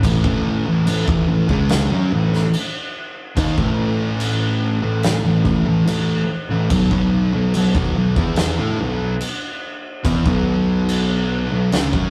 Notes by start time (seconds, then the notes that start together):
0.03 A1 A2 E3, kick, crash
0.23 A1 A2 E3 A3, kick
0.66 A1 A2 E3
0.87 A1 A2 E3, crash
1.06 A1 A2 E3, kick
1.27 A1 A2 E3
1.48 C#2 C#3 G#3 C#4, kick
1.69 snare, crash
1.90 F#2 F#3 C#4
2.10 A1 A2 E3
2.33 snare
2.53 crash
3.35 D#2 D#3 A#3, kick, crash
3.57 A1 A2 E3 A3, kick
4.20 crash
4.82 A1 A2 E3
5.03 snare, crash
5.24 A1 A2 E3
5.44 A1 A2 E3, kick
5.65 A1 A2 E3
5.86 A1 A2 E3, crash
6.49 A1 A2 E3
6.70 B1 B2 F#3, kick, crash
6.91 B1 B2 F#3 B3, kick
7.34 B1 B2 F#3
7.54 B1 B2 F#3, crash
7.75 B1 B2 F#3, kick
7.96 B1 B2 F#3
8.16 E2 E3 B3 E4, kick
8.36 snare, crash
8.59 A2 A3 E4
8.79 B1 B2 F#3
9.21 crash
10.04 E2 E3 B3, kick, crash
10.24 B1 B2 F#3 B3, kick
10.89 crash
11.50 B1 B2 F#3
11.72 C#2 C#3 G#3, snare, crash
11.92 F#2 F#3 C#4, kick